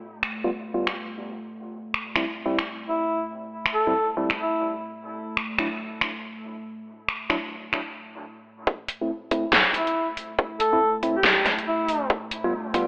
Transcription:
Already playing: ambient pad A3
0.23 finger snap
0.44 tine electric piano G3 B3 F4
0.74 tine electric piano G3 B3 F4
0.87 finger snap
1.94 finger snap
2.16 tine electric piano G3 C4 E4, finger snap
2.46 tine electric piano G3 C4 E4
2.59 finger snap
2.88 duduk E4
3.66 finger snap
3.74 duduk A4
3.87 tine electric piano G3 C4 E4
4.17 tine electric piano G3 C4 E4
4.30 finger snap
4.39 duduk E4
5.37 finger snap
5.59 tine electric piano F#3 D4 E4, finger snap
6.01 finger snap
7.09 finger snap
7.30 tine electric piano F#3 D4 E4, finger snap
7.73 finger snap
8.67 ambient pad A3, kick
8.88 closed hi-hat
9.01 tine electric piano A3 C4 E4
9.31 tine electric piano A3 C4 E4, kick, closed hi-hat
9.53 snare
9.74 duduk E4, closed hi-hat
9.87 closed hi-hat
10.17 open hi-hat
10.39 kick
10.60 duduk A4, closed hi-hat
10.73 tine electric piano A3 C4 E4
11.03 tine electric piano A3 C4 E4, open hi-hat
11.16 duduk G4
11.24 snare
11.46 kick, snare, closed hi-hat
11.59 closed hi-hat
11.67 duduk E4
11.89 open hi-hat
12.10 kick
12.31 closed hi-hat
12.44 tine electric piano G3 B3 F4
12.74 tine electric piano G3 B3 F4, kick, closed hi-hat

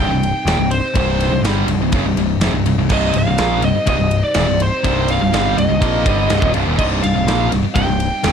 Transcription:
Already playing: analog synth pad C3 G3 C4 D#4
0.00 distorted electric guitar C2 G2, lead electric guitar G5
0.09 picked electric bass C1, distorted electric guitar C2 G2
0.23 ride
0.45 picked electric bass D#1, distorted electric guitar D#2 A#2, snare, ride
0.57 picked electric bass C1, distorted electric guitar C2 G2
0.71 lead electric guitar C5, ride
0.94 picked electric bass C1, distorted electric guitar C2 G2 C3, kick, ride
1.20 ride
1.30 picked electric bass C1, distorted electric guitar C2 G2
1.43 picked electric bass G1, distorted electric guitar G2 D3 G3, snare, ride
1.66 picked electric bass C1, distorted electric guitar C2 G2, ride
1.79 picked electric bass C1, distorted electric guitar C2 G2
1.92 picked electric bass F#1, distorted electric guitar F#2 C#3, kick, ride
2.03 picked electric bass C1, distorted electric guitar C2 G2
2.15 picked electric bass C1, distorted electric guitar C2 G2, ride
2.40 picked electric bass F1, distorted electric guitar F2 C3, snare, ride
2.52 picked electric bass C1, distorted electric guitar C2 G2
2.64 picked electric bass C1, distorted electric guitar C2 G2, ride
2.76 picked electric bass C1, distorted electric guitar C2 G2
2.89 picked electric bass C1, distorted electric guitar C2 G2 C3, lead electric guitar D#5, kick, crash
3.13 picked electric bass C1, distorted electric guitar C2 G2, ride
3.18 lead electric guitar F5
3.25 picked electric bass C1, distorted electric guitar C2 G2
3.38 picked electric bass A#1, distorted electric guitar A#2 F3 A#3, snare, ride
3.62 picked electric bass C1, distorted electric guitar C2 G2, lead electric guitar D#5, ride
3.75 muted distorted electric guitar stroke, muted picked electric bass stroke
3.86 picked electric bass C1, distorted electric guitar C2 G2, lead electric guitar D#5, kick, ride
3.99 picked electric bass C1, distorted electric guitar C2 G2
4.11 ride
4.24 lead electric guitar D5
4.34 picked electric bass D#1, distorted electric guitar D#2 A#2, snare, ride
4.47 picked electric bass C1, distorted electric guitar C2 G2
4.60 lead electric guitar C5, ride
4.83 picked electric bass C1, distorted electric guitar C2 G2 C3, kick, ride
5.08 lead electric guitar F5, ride
5.21 picked electric bass C1, distorted electric guitar C2 G2
5.33 picked electric bass G1, distorted electric guitar G2 D3 G3, snare, ride
5.57 picked electric bass C1, distorted electric guitar C2 G2, lead electric guitar D#5, ride
5.69 picked electric bass C1, distorted electric guitar C2 G2
5.81 picked electric bass A#1, distorted electric guitar A#2 F3 A#3, kick, ride
6.05 picked electric bass G1, distorted electric guitar G2 D3 G3, kick, ride
6.29 picked electric bass C1, distorted electric guitar C2 G2, snare, ride
6.41 picked electric bass D#1, distorted electric guitar D#2 A#2, kick
6.53 picked electric bass C1, distorted electric guitar C2 G2, ride
6.67 picked electric bass D#1, distorted electric guitar D#2 A#2
6.78 picked electric bass C1, distorted electric guitar C2 G2 C3, lead electric guitar D#5, kick, crash
7.02 picked electric bass C1, distorted electric guitar C2 G2, lead electric guitar F5, ride
7.13 picked electric bass C1, distorted electric guitar C2 G2
7.25 picked electric bass A#1, distorted electric guitar A#2 F3 A#3, snare, ride
7.51 picked electric bass C1, distorted electric guitar C2 G2, ride
7.63 muted distorted electric guitar stroke, muted picked electric bass stroke
7.74 picked electric bass C1, distorted electric guitar C2 G2, lead electric guitar G5, kick, ride
7.86 picked electric bass C1, distorted electric guitar C2 G2
8.00 ride
8.23 picked electric bass D#1, distorted electric guitar D#2 A#2, snare, ride

